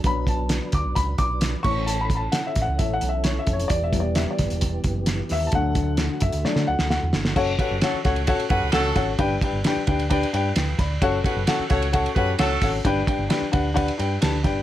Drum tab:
CC |--------------x-|----------------|----------------|----------------|
RD |----------------|----------------|----------------|----------------|
HH |x-x-x-x-x-x-x---|x-x-x-x-x-x-x-xx|x-x-x-xxx-x-x-o-|x-x-x-xx--------|
SD |----o-------o---|----o-o-----o---|----o-o-----o-o-|----o---oo-oo-oo|
BD |o-o---o-o-o---o-|--o---o-o-----o-|o-o---o-o-o-----|o-o---o---------|

CC |x---------------|----------------|----------------|----------------|
RD |--x-x-xxxxx-x-x-|x-x-x-xxxxx-x-x-|x-x-x-xxxxx-x-x-|x-x-x-x-xxx-x-x-|
HH |----------------|----------------|--------------o-|p---------------|
SD |----o-o-----o-o-|----o-------o-o-|----o-o-----o-o-|----o-------o-o-|
BD |o-o---o-o-o---o-|o-o---o-o-----o-|o-o---o-o-o---o-|o-o---o-o-----o-|